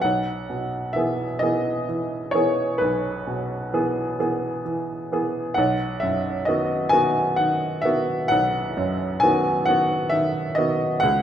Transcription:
0.02 B1 F#5
0.50 B2
0.93 E3 B3 E5
0.97 G#4
1.39 E3 B3 G#4 D#5
1.89 E3
2.31 E3 B3 G#4 C#5
2.78 B1 B4
3.27 B2
3.73 E3 B3 G#4
4.19 E3 B3 G#4
4.65 E3
5.12 E3 B3 G#4
5.54 B1 F#5
6.00 F#2 E5
6.45 D#3 B3 F#4 D#5
6.89 D#3 B3 F#4 G#5
7.36 D#3 F#5
7.82 D#3 B3 F#4 E5
8.28 B1 F#5
8.77 F#2
9.20 D#3 B3 F#4 G#5
9.66 D#3 B3 F#4 F#5
10.09 D#3 E5
10.55 D#3 B3 F#4 D#5
11.00 C#2 F#5

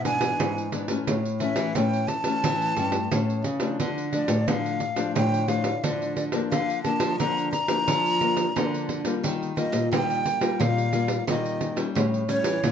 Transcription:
Already playing: G#2 B2
0.05 E3 B3 D4 G#5, pandeiro
0.20 E3 B3 D4, pandeiro
0.40 G#2, pandeiro
0.58 pandeiro
0.72 E3 B3 D4, pandeiro
0.88 E3 A3 C#4, pandeiro
1.07 A2, pandeiro
1.25 pandeiro
1.40 E3 A3 C#4 E5, pandeiro
1.56 E3, pandeiro
1.75 A2 E3 A3 C#4 G5, pandeiro
1.93 pandeiro
2.08 A5, pandeiro
2.24 E3 A3 C#4, pandeiro
2.44 A2 E3, pandeiro
2.62 pandeiro
2.76 G2 E3 A3 C#4, pandeiro
2.92 pandeiro
3.11 A2 E3 A3 C#4, pandeiro
3.30 pandeiro
3.44 C#3, pandeiro
3.60 F3 A3 D4, pandeiro
3.80 D3, pandeiro
3.98 pandeiro
4.12 F3 A3 D4 D5, pandeiro
4.28 A2, pandeiro
4.48 A2 D3 F3 A3 D4 F5, pandeiro
4.66 pandeiro
4.80 pandeiro
4.96 F3 A3 D4, pandeiro
5.15 A2 D3 G5, pandeiro
5.34 pandeiro
5.48 F3 A3 D4 F5, pandeiro
5.64 pandeiro
5.83 A2 D3 F3 A3 D4 D5, pandeiro
6.02 pandeiro
6.16 D5, pandeiro
6.32 F3 A#3 D4, pandeiro
6.51 D3 F5, pandeiro
6.70 pandeiro
6.84 F3 A#3 D4 A5, pandeiro
7.00 F3, pandeiro
7.19 D3 F3 A#3 D4 A#5, pandeiro
7.38 pandeiro
7.52 A#5, pandeiro
7.68 F3 A#3 D4, pandeiro
7.88 D3 F3, pandeiro
8.06 pandeiro
8.21 F3 A#3 D4, pandeiro
8.37 pandeiro
8.56 D3 F3 A#3 D4, pandeiro
8.74 pandeiro
8.89 pandeiro
9.05 G3 A#3 F4, pandeiro
9.23 D#3, pandeiro
9.43 pandeiro
9.57 G3 A#3 F4 D#5, pandeiro
9.72 A#2, pandeiro
9.92 A#2 D#3 G3 A#3 F4 G5, pandeiro
10.10 pandeiro
10.26 pandeiro
10.41 G3 A#3 F4, pandeiro
10.60 A#2 D#3 F5, pandeiro
10.78 pandeiro
10.93 G3 A#3 F4, pandeiro
11.08 pandeiro
11.27 A#2 D#3 G3 A#3 F4 D#5, pandeiro
11.46 pandeiro
11.61 pandeiro
11.76 G3 C#4 E4, pandeiro
11.95 A2, pandeiro
12.14 pandeiro
12.28 G3 C#4 E4 C#5, pandeiro
12.44 E3, pandeiro
12.63 A#2 E3 G3 C#4 E4, pandeiro

